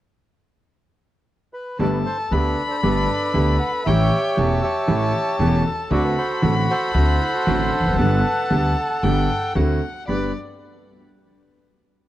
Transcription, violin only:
1.80 A5
2.33 B5
3.87 G5
4.38 A5
5.91 B5
7.99 A5
9.04 G5
9.56 F#5
10.09 D5

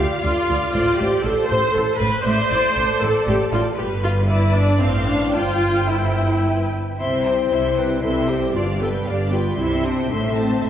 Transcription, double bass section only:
0.24 D2
0.49 D2
0.75 A1
1.00 A1
1.25 A1
1.50 A1
1.75 A1
2.00 A1
2.26 A1
2.51 A1
2.76 A1
3.02 A1
3.27 A1
3.53 A1
3.77 G1
4.82 A1
5.37 G1
7.00 C2
7.52 C2
8.04 C2
8.56 G1
9.07 G1
9.58 C2
10.12 A1
10.64 A1

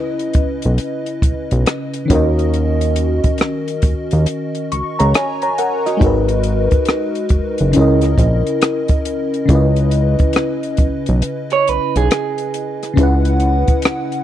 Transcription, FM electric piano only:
Already playing: C#3 C#4 E4 B4 D#5
2.05 D#3 C#4
2.10 F#4 A#4
2.15 D#5
4.72 C#6
4.99 C#5 A#5
5.15 G#5
5.43 C#5 A#5
5.58 A#4 F#5
5.86 F#4 D#5
5.97 G#3 D#4
6.02 F#4 A#4
6.06 B4
7.72 C#3 C#4
7.76 E4 A#4
7.81 D#5
9.46 C#3 C#4
9.50 E4 B4
9.55 D#5
12.94 C#3 C#4
12.98 E4 B4
13.03 F#5

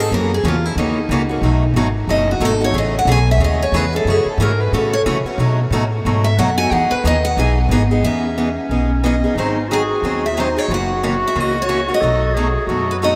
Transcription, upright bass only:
0.11 F#2
0.44 E2
0.76 D#2
1.09 C#2
1.41 B1
1.74 G#1
2.07 F#1
2.40 G#1
2.72 A1
3.05 B1
3.38 D#2
3.72 E2
4.05 F#2
4.25 muted upright bass stroke
4.38 G#2
4.72 A2
5.06 C#3
5.25 muted upright bass stroke
5.38 B2
5.71 A2
6.05 G#2
6.38 F#2
6.71 E2
6.91 muted upright bass stroke
7.04 D#2
7.37 B1
7.69 G#1
8.03 E2
8.69 B1
9.35 G#1
10.02 D#2
10.68 F#1
11.36 C#2
12.02 B1
12.67 F#2

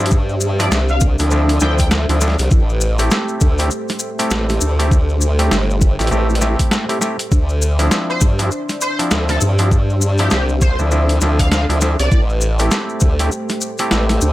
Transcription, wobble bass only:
Already playing: G2
0.71 C2
1.19 D2
1.61 D2
2.09 D2
2.39 C2
2.52 A1
3.42 D2
4.31 A1
4.62 D2
5.52 G1
6.00 A1
6.12 A1
7.32 D2
8.22 G2
9.12 D2
9.42 G2
10.32 C2
10.79 D2
11.22 D2
11.69 D2
12.00 C2
12.12 A1
13.02 D2
13.92 A1
14.22 D2

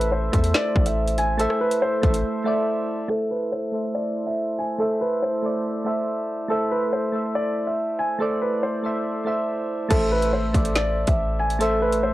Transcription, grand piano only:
0.12 C5
0.54 D5
0.86 E5
1.18 G#5
1.39 A4
1.61 B4
1.82 C5
2.46 E5
3.10 A4
3.31 B4
3.52 C5
3.95 D5
4.27 E5
4.59 G#5
4.80 A4
5.01 B4
5.22 C5
5.86 E5
6.50 A4
6.71 B4
6.93 C5
7.35 D5
7.67 E5
7.99 G#5
8.20 A4
8.42 B4
8.63 C5
9.27 E5
9.91 A4
10.12 B4
10.33 C5
10.76 D5
11.07 E5
11.39 G#5
11.61 A4
11.82 B4
12.03 C5

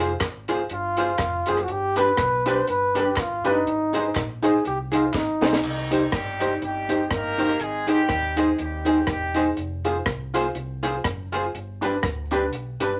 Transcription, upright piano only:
0.00 F4 G#4 C5
0.49 F4 G#4 C5
0.97 F4 G#4 C5
1.47 F4 G#4 C5
1.96 D4 G4 B4
2.46 D4 G4 B4
2.95 D4 G4 B4
3.45 D4 G4 B4
3.94 D#4 G#4 C5
4.43 D#4 G#4 C5
4.92 D#4 G#4 C5
5.42 D#4 G#4 C5
5.91 D#4 G4 C5
6.40 D#4 G4 C5
6.90 D#4 G4 C5
7.39 D#4 G4 C5
7.88 D#4 G#4 C5
8.37 D#4 G#4 C5
8.86 D#4 G#4 C5
9.35 D#4 G#4 C5
9.85 F4 G#4 C5
10.34 F4 G#4 C5
10.83 F4 G#4 C5
11.32 F4 G#4 C5
11.81 D4 G4 B4
12.31 D4 G4 B4
12.81 D4 G4 B4

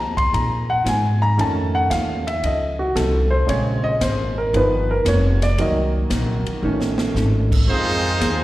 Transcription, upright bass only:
Already playing: D#2
0.34 A#2
0.85 G#2
1.38 F2
1.91 D#2
2.43 C#2
2.95 C2
3.48 A#1
4.01 G#1
4.53 G1
5.05 F1
5.58 C2
6.10 A#1
6.46 muted upright bass stroke
6.63 A1
7.15 G#1
7.68 F2
8.21 D#2

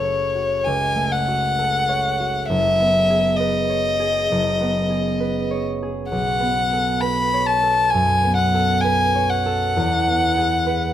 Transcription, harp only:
Already playing: F#1 A3 F#4 A4
0.05 C#5
0.36 F#4
0.66 C#2
0.96 A3
1.28 F#4
1.59 A4
1.89 C#5
2.20 F#4
2.50 F#1
2.80 B3
3.10 G#4
3.40 B4
3.70 C#5
4.00 G#4
4.32 F#1
4.61 B3
4.90 G#4
5.20 B4
5.51 C#5
5.82 G#4
6.12 B1
6.40 B3
6.73 A4
7.02 B4
7.34 C#5
7.62 A4
7.94 F#2
8.24 B3
8.54 A4
8.84 B4
9.15 C#5
9.46 A4
9.76 E2
10.08 B3
10.37 G#4
10.67 B4

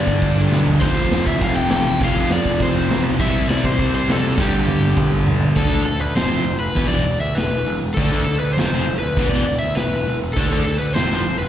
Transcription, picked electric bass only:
0.07 G1
0.22 G1
0.36 G1
0.51 B1
0.66 G1
0.82 F1
0.96 F1
1.11 F1
1.27 D2
1.41 F1
1.70 A1
2.00 F1
2.15 F1
2.29 F2
2.45 F1
2.60 F1
2.75 F1
2.88 A1
3.03 B1
3.20 C2
3.33 C2
3.48 C2
3.64 A1
3.79 C2
4.08 F2
4.38 G1
4.53 G1
4.67 G2
4.82 G1
4.97 G1
5.12 G1
5.27 B1
5.40 G1
5.56 D2
5.69 D2
5.85 D2
6.00 D2
6.15 F1
6.30 F1
6.45 F1
6.59 F1
6.77 E1
6.89 E1
7.05 E1
7.20 D2
7.35 E1
7.51 E1
7.66 E1
7.82 E1
7.98 D2
8.11 D2
8.27 D2
8.42 D2
8.57 F1
8.72 F1
8.87 F1
9.02 D2
9.17 E1
9.32 E1
9.47 E1
9.63 D2
9.77 E1
9.92 E1
10.08 E1
10.22 E1
10.36 D2
10.52 D2
10.67 D2
10.80 D2
10.96 F1
11.11 F1
11.25 F1
11.41 F1

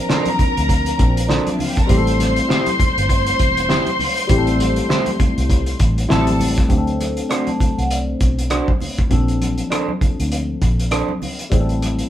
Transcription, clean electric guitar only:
0.09 D4 A4 C5
1.28 D4 A4 C5
2.49 E4 G4 C5
3.69 E4 G4 C5
4.89 E4 G4 C5
6.09 E4 G4 C5
7.29 D4 F#4 C5
8.50 D4 F#4 C5
9.70 D4 A4 C5
10.91 D4 A4 C5

